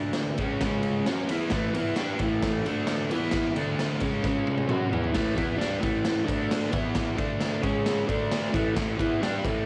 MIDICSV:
0, 0, Header, 1, 3, 480
1, 0, Start_track
1, 0, Key_signature, 3, "major"
1, 0, Tempo, 452489
1, 1618, Time_signature, 4, 2, 24, 8
1, 10244, End_track
2, 0, Start_track
2, 0, Title_t, "Overdriven electric guitar"
2, 0, Program_c, 0, 29
2, 0, Note_on_c, 0, 50, 93
2, 0, Note_on_c, 0, 57, 95
2, 0, Note_on_c, 0, 62, 98
2, 409, Note_off_c, 0, 50, 0
2, 413, Note_off_c, 0, 57, 0
2, 417, Note_on_c, 0, 49, 78
2, 418, Note_off_c, 0, 62, 0
2, 430, Note_on_c, 0, 56, 91
2, 436, Note_on_c, 0, 61, 97
2, 649, Note_off_c, 0, 49, 0
2, 656, Note_off_c, 0, 56, 0
2, 659, Note_off_c, 0, 61, 0
2, 663, Note_on_c, 0, 49, 98
2, 678, Note_on_c, 0, 56, 109
2, 685, Note_on_c, 0, 61, 97
2, 1126, Note_off_c, 0, 49, 0
2, 1130, Note_on_c, 0, 54, 106
2, 1131, Note_off_c, 0, 61, 0
2, 1140, Note_off_c, 0, 56, 0
2, 1144, Note_on_c, 0, 61, 113
2, 1159, Note_on_c, 0, 66, 108
2, 1365, Note_off_c, 0, 54, 0
2, 1369, Note_on_c, 0, 52, 98
2, 1373, Note_off_c, 0, 61, 0
2, 1381, Note_off_c, 0, 66, 0
2, 1389, Note_on_c, 0, 59, 102
2, 1393, Note_on_c, 0, 64, 97
2, 1593, Note_off_c, 0, 52, 0
2, 1598, Note_on_c, 0, 45, 97
2, 1605, Note_off_c, 0, 59, 0
2, 1609, Note_on_c, 0, 52, 104
2, 1618, Note_off_c, 0, 64, 0
2, 1623, Note_on_c, 0, 57, 111
2, 1839, Note_off_c, 0, 52, 0
2, 1840, Note_off_c, 0, 45, 0
2, 1852, Note_on_c, 0, 52, 100
2, 1853, Note_off_c, 0, 57, 0
2, 1867, Note_on_c, 0, 59, 111
2, 1878, Note_on_c, 0, 64, 108
2, 2086, Note_off_c, 0, 59, 0
2, 2088, Note_off_c, 0, 52, 0
2, 2090, Note_on_c, 0, 55, 90
2, 2100, Note_off_c, 0, 64, 0
2, 2104, Note_on_c, 0, 62, 107
2, 2108, Note_on_c, 0, 67, 111
2, 2327, Note_off_c, 0, 55, 0
2, 2334, Note_off_c, 0, 62, 0
2, 2335, Note_on_c, 0, 45, 88
2, 2336, Note_off_c, 0, 67, 0
2, 2345, Note_on_c, 0, 52, 86
2, 2357, Note_on_c, 0, 57, 101
2, 2809, Note_off_c, 0, 45, 0
2, 2813, Note_on_c, 0, 50, 102
2, 2814, Note_off_c, 0, 52, 0
2, 2817, Note_off_c, 0, 57, 0
2, 2829, Note_on_c, 0, 57, 101
2, 2834, Note_on_c, 0, 62, 102
2, 3288, Note_off_c, 0, 50, 0
2, 3296, Note_off_c, 0, 57, 0
2, 3296, Note_on_c, 0, 52, 98
2, 3299, Note_off_c, 0, 62, 0
2, 3308, Note_on_c, 0, 59, 98
2, 3314, Note_on_c, 0, 64, 119
2, 3763, Note_off_c, 0, 52, 0
2, 3768, Note_on_c, 0, 50, 103
2, 3775, Note_off_c, 0, 59, 0
2, 3778, Note_off_c, 0, 64, 0
2, 3782, Note_on_c, 0, 57, 89
2, 3783, Note_on_c, 0, 62, 93
2, 4243, Note_off_c, 0, 50, 0
2, 4247, Note_on_c, 0, 49, 86
2, 4252, Note_off_c, 0, 57, 0
2, 4253, Note_off_c, 0, 62, 0
2, 4259, Note_on_c, 0, 56, 103
2, 4263, Note_on_c, 0, 61, 99
2, 4478, Note_off_c, 0, 49, 0
2, 4490, Note_off_c, 0, 56, 0
2, 4491, Note_on_c, 0, 49, 87
2, 4492, Note_off_c, 0, 61, 0
2, 4506, Note_on_c, 0, 56, 97
2, 4518, Note_on_c, 0, 61, 101
2, 4955, Note_off_c, 0, 49, 0
2, 4959, Note_on_c, 0, 54, 100
2, 4964, Note_off_c, 0, 61, 0
2, 4972, Note_off_c, 0, 56, 0
2, 4977, Note_on_c, 0, 61, 109
2, 4985, Note_on_c, 0, 66, 122
2, 5192, Note_off_c, 0, 54, 0
2, 5196, Note_on_c, 0, 52, 93
2, 5199, Note_off_c, 0, 61, 0
2, 5203, Note_on_c, 0, 59, 100
2, 5213, Note_off_c, 0, 66, 0
2, 5223, Note_on_c, 0, 64, 103
2, 5430, Note_off_c, 0, 52, 0
2, 5434, Note_on_c, 0, 45, 94
2, 5442, Note_off_c, 0, 59, 0
2, 5451, Note_on_c, 0, 52, 92
2, 5452, Note_off_c, 0, 64, 0
2, 5460, Note_on_c, 0, 57, 100
2, 5671, Note_off_c, 0, 52, 0
2, 5677, Note_off_c, 0, 45, 0
2, 5683, Note_on_c, 0, 52, 88
2, 5690, Note_off_c, 0, 57, 0
2, 5693, Note_on_c, 0, 59, 99
2, 5701, Note_on_c, 0, 64, 114
2, 5904, Note_off_c, 0, 59, 0
2, 5909, Note_on_c, 0, 55, 99
2, 5912, Note_off_c, 0, 64, 0
2, 5916, Note_on_c, 0, 62, 104
2, 5921, Note_off_c, 0, 52, 0
2, 5933, Note_on_c, 0, 67, 98
2, 6148, Note_on_c, 0, 45, 82
2, 6154, Note_off_c, 0, 55, 0
2, 6158, Note_off_c, 0, 62, 0
2, 6160, Note_on_c, 0, 52, 92
2, 6166, Note_off_c, 0, 67, 0
2, 6171, Note_on_c, 0, 57, 98
2, 6619, Note_off_c, 0, 45, 0
2, 6619, Note_off_c, 0, 57, 0
2, 6623, Note_on_c, 0, 50, 104
2, 6627, Note_off_c, 0, 52, 0
2, 6632, Note_on_c, 0, 57, 95
2, 6641, Note_on_c, 0, 62, 115
2, 7111, Note_off_c, 0, 50, 0
2, 7115, Note_off_c, 0, 57, 0
2, 7119, Note_off_c, 0, 62, 0
2, 7119, Note_on_c, 0, 52, 97
2, 7119, Note_on_c, 0, 59, 101
2, 7137, Note_on_c, 0, 64, 106
2, 7589, Note_off_c, 0, 52, 0
2, 7593, Note_on_c, 0, 50, 99
2, 7595, Note_off_c, 0, 59, 0
2, 7599, Note_on_c, 0, 57, 92
2, 7607, Note_off_c, 0, 64, 0
2, 7612, Note_on_c, 0, 62, 118
2, 8076, Note_off_c, 0, 50, 0
2, 8078, Note_off_c, 0, 57, 0
2, 8080, Note_on_c, 0, 49, 90
2, 8085, Note_off_c, 0, 62, 0
2, 8091, Note_on_c, 0, 56, 97
2, 8100, Note_on_c, 0, 61, 100
2, 8549, Note_off_c, 0, 49, 0
2, 8553, Note_on_c, 0, 50, 99
2, 8565, Note_off_c, 0, 56, 0
2, 8569, Note_off_c, 0, 61, 0
2, 8569, Note_on_c, 0, 57, 96
2, 8579, Note_on_c, 0, 62, 102
2, 9035, Note_off_c, 0, 50, 0
2, 9044, Note_off_c, 0, 57, 0
2, 9048, Note_on_c, 0, 45, 92
2, 9049, Note_off_c, 0, 62, 0
2, 9064, Note_on_c, 0, 52, 96
2, 9078, Note_on_c, 0, 57, 104
2, 9267, Note_off_c, 0, 45, 0
2, 9279, Note_off_c, 0, 52, 0
2, 9279, Note_on_c, 0, 45, 101
2, 9291, Note_off_c, 0, 57, 0
2, 9291, Note_on_c, 0, 52, 110
2, 9304, Note_on_c, 0, 57, 102
2, 9511, Note_off_c, 0, 52, 0
2, 9519, Note_off_c, 0, 45, 0
2, 9524, Note_on_c, 0, 52, 100
2, 9531, Note_off_c, 0, 57, 0
2, 9541, Note_on_c, 0, 59, 101
2, 9546, Note_on_c, 0, 64, 100
2, 9761, Note_off_c, 0, 52, 0
2, 9764, Note_off_c, 0, 59, 0
2, 9768, Note_on_c, 0, 55, 89
2, 9772, Note_off_c, 0, 64, 0
2, 9779, Note_on_c, 0, 62, 103
2, 9789, Note_on_c, 0, 67, 101
2, 10003, Note_off_c, 0, 55, 0
2, 10009, Note_off_c, 0, 62, 0
2, 10014, Note_off_c, 0, 67, 0
2, 10014, Note_on_c, 0, 45, 88
2, 10027, Note_on_c, 0, 52, 97
2, 10031, Note_on_c, 0, 57, 97
2, 10244, Note_off_c, 0, 45, 0
2, 10244, Note_off_c, 0, 52, 0
2, 10244, Note_off_c, 0, 57, 0
2, 10244, End_track
3, 0, Start_track
3, 0, Title_t, "Drums"
3, 140, Note_on_c, 9, 38, 115
3, 142, Note_on_c, 9, 51, 101
3, 246, Note_off_c, 9, 38, 0
3, 248, Note_off_c, 9, 51, 0
3, 399, Note_on_c, 9, 51, 80
3, 409, Note_on_c, 9, 36, 92
3, 505, Note_off_c, 9, 51, 0
3, 515, Note_off_c, 9, 36, 0
3, 644, Note_on_c, 9, 38, 116
3, 646, Note_on_c, 9, 51, 97
3, 652, Note_on_c, 9, 36, 115
3, 750, Note_off_c, 9, 38, 0
3, 752, Note_off_c, 9, 51, 0
3, 758, Note_off_c, 9, 36, 0
3, 878, Note_on_c, 9, 51, 72
3, 984, Note_off_c, 9, 51, 0
3, 1128, Note_on_c, 9, 38, 122
3, 1131, Note_on_c, 9, 51, 102
3, 1235, Note_off_c, 9, 38, 0
3, 1237, Note_off_c, 9, 51, 0
3, 1366, Note_on_c, 9, 51, 95
3, 1472, Note_off_c, 9, 51, 0
3, 1592, Note_on_c, 9, 38, 114
3, 1594, Note_on_c, 9, 51, 106
3, 1611, Note_on_c, 9, 36, 116
3, 1698, Note_off_c, 9, 38, 0
3, 1700, Note_off_c, 9, 51, 0
3, 1717, Note_off_c, 9, 36, 0
3, 1852, Note_on_c, 9, 51, 88
3, 1958, Note_off_c, 9, 51, 0
3, 2082, Note_on_c, 9, 38, 114
3, 2084, Note_on_c, 9, 51, 109
3, 2188, Note_off_c, 9, 38, 0
3, 2190, Note_off_c, 9, 51, 0
3, 2324, Note_on_c, 9, 51, 79
3, 2333, Note_on_c, 9, 36, 97
3, 2431, Note_off_c, 9, 51, 0
3, 2439, Note_off_c, 9, 36, 0
3, 2573, Note_on_c, 9, 38, 110
3, 2574, Note_on_c, 9, 36, 115
3, 2576, Note_on_c, 9, 51, 107
3, 2679, Note_off_c, 9, 38, 0
3, 2680, Note_off_c, 9, 36, 0
3, 2682, Note_off_c, 9, 51, 0
3, 2820, Note_on_c, 9, 51, 83
3, 2926, Note_off_c, 9, 51, 0
3, 3044, Note_on_c, 9, 38, 127
3, 3046, Note_on_c, 9, 51, 114
3, 3150, Note_off_c, 9, 38, 0
3, 3152, Note_off_c, 9, 51, 0
3, 3297, Note_on_c, 9, 51, 96
3, 3403, Note_off_c, 9, 51, 0
3, 3516, Note_on_c, 9, 38, 127
3, 3518, Note_on_c, 9, 51, 115
3, 3536, Note_on_c, 9, 36, 111
3, 3622, Note_off_c, 9, 38, 0
3, 3624, Note_off_c, 9, 51, 0
3, 3642, Note_off_c, 9, 36, 0
3, 3776, Note_on_c, 9, 51, 83
3, 3882, Note_off_c, 9, 51, 0
3, 4021, Note_on_c, 9, 38, 107
3, 4023, Note_on_c, 9, 51, 107
3, 4127, Note_off_c, 9, 38, 0
3, 4129, Note_off_c, 9, 51, 0
3, 4245, Note_on_c, 9, 51, 74
3, 4258, Note_on_c, 9, 36, 92
3, 4351, Note_off_c, 9, 51, 0
3, 4365, Note_off_c, 9, 36, 0
3, 4487, Note_on_c, 9, 38, 64
3, 4498, Note_on_c, 9, 36, 114
3, 4593, Note_off_c, 9, 38, 0
3, 4604, Note_off_c, 9, 36, 0
3, 4743, Note_on_c, 9, 48, 83
3, 4849, Note_off_c, 9, 48, 0
3, 4855, Note_on_c, 9, 48, 80
3, 4961, Note_off_c, 9, 48, 0
3, 4974, Note_on_c, 9, 47, 110
3, 5080, Note_off_c, 9, 47, 0
3, 5228, Note_on_c, 9, 43, 122
3, 5334, Note_off_c, 9, 43, 0
3, 5345, Note_on_c, 9, 43, 88
3, 5451, Note_off_c, 9, 43, 0
3, 5457, Note_on_c, 9, 38, 113
3, 5460, Note_on_c, 9, 49, 116
3, 5465, Note_on_c, 9, 36, 121
3, 5563, Note_off_c, 9, 38, 0
3, 5566, Note_off_c, 9, 49, 0
3, 5571, Note_off_c, 9, 36, 0
3, 5701, Note_on_c, 9, 51, 88
3, 5705, Note_on_c, 9, 36, 107
3, 5807, Note_off_c, 9, 51, 0
3, 5811, Note_off_c, 9, 36, 0
3, 5955, Note_on_c, 9, 38, 112
3, 5958, Note_on_c, 9, 51, 103
3, 6062, Note_off_c, 9, 38, 0
3, 6064, Note_off_c, 9, 51, 0
3, 6182, Note_on_c, 9, 51, 84
3, 6184, Note_on_c, 9, 36, 113
3, 6289, Note_off_c, 9, 51, 0
3, 6291, Note_off_c, 9, 36, 0
3, 6415, Note_on_c, 9, 38, 117
3, 6417, Note_on_c, 9, 51, 107
3, 6521, Note_off_c, 9, 38, 0
3, 6523, Note_off_c, 9, 51, 0
3, 6666, Note_on_c, 9, 36, 104
3, 6674, Note_on_c, 9, 51, 83
3, 6772, Note_off_c, 9, 36, 0
3, 6780, Note_off_c, 9, 51, 0
3, 6907, Note_on_c, 9, 38, 124
3, 6909, Note_on_c, 9, 51, 127
3, 7013, Note_off_c, 9, 38, 0
3, 7015, Note_off_c, 9, 51, 0
3, 7133, Note_on_c, 9, 51, 97
3, 7140, Note_on_c, 9, 36, 127
3, 7239, Note_off_c, 9, 51, 0
3, 7246, Note_off_c, 9, 36, 0
3, 7371, Note_on_c, 9, 38, 121
3, 7373, Note_on_c, 9, 51, 110
3, 7380, Note_on_c, 9, 36, 118
3, 7477, Note_off_c, 9, 38, 0
3, 7479, Note_off_c, 9, 51, 0
3, 7486, Note_off_c, 9, 36, 0
3, 7620, Note_on_c, 9, 51, 81
3, 7621, Note_on_c, 9, 36, 114
3, 7726, Note_off_c, 9, 51, 0
3, 7727, Note_off_c, 9, 36, 0
3, 7855, Note_on_c, 9, 38, 107
3, 7857, Note_on_c, 9, 51, 101
3, 7961, Note_off_c, 9, 38, 0
3, 7963, Note_off_c, 9, 51, 0
3, 8098, Note_on_c, 9, 36, 121
3, 8099, Note_on_c, 9, 51, 81
3, 8204, Note_off_c, 9, 36, 0
3, 8205, Note_off_c, 9, 51, 0
3, 8338, Note_on_c, 9, 38, 121
3, 8340, Note_on_c, 9, 51, 106
3, 8444, Note_off_c, 9, 38, 0
3, 8446, Note_off_c, 9, 51, 0
3, 8581, Note_on_c, 9, 36, 106
3, 8587, Note_on_c, 9, 51, 71
3, 8688, Note_off_c, 9, 36, 0
3, 8693, Note_off_c, 9, 51, 0
3, 8822, Note_on_c, 9, 38, 127
3, 8824, Note_on_c, 9, 51, 117
3, 8928, Note_off_c, 9, 38, 0
3, 8930, Note_off_c, 9, 51, 0
3, 9060, Note_on_c, 9, 36, 127
3, 9075, Note_on_c, 9, 51, 95
3, 9166, Note_off_c, 9, 36, 0
3, 9181, Note_off_c, 9, 51, 0
3, 9298, Note_on_c, 9, 38, 118
3, 9300, Note_on_c, 9, 36, 114
3, 9300, Note_on_c, 9, 51, 103
3, 9404, Note_off_c, 9, 38, 0
3, 9406, Note_off_c, 9, 36, 0
3, 9406, Note_off_c, 9, 51, 0
3, 9541, Note_on_c, 9, 36, 116
3, 9551, Note_on_c, 9, 51, 87
3, 9647, Note_off_c, 9, 36, 0
3, 9657, Note_off_c, 9, 51, 0
3, 9791, Note_on_c, 9, 38, 112
3, 9793, Note_on_c, 9, 51, 110
3, 9897, Note_off_c, 9, 38, 0
3, 9899, Note_off_c, 9, 51, 0
3, 10020, Note_on_c, 9, 36, 117
3, 10027, Note_on_c, 9, 51, 82
3, 10126, Note_off_c, 9, 36, 0
3, 10133, Note_off_c, 9, 51, 0
3, 10244, End_track
0, 0, End_of_file